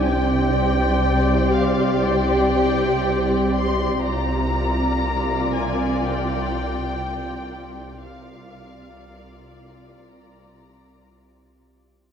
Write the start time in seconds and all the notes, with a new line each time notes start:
0.03 C2 C3 G4 C5 D5 G5
1.54 F5
2.04 G5
3.55 C6
4.03 C2 C3 F4 A#4 D5 A#5
5.55 G#5
6.04 G5
8.02 C2 C3 F4 A#4 D5 F5
10.09 A#5